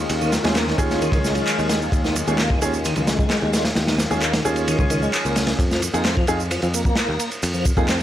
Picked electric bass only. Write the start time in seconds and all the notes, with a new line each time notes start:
0.10 D#2
0.44 D#2
0.78 D#2
1.12 C#2
1.59 D#2
1.92 D#2
2.28 D#2
2.62 D#2
2.97 C#2
3.42 D#2
3.76 D#2
4.11 D#2
4.45 D#2
4.79 C#2
5.25 C#2
5.59 F2
5.94 F2
6.28 F2
6.63 F2
7.09 D#2
7.43 F2
7.77 F2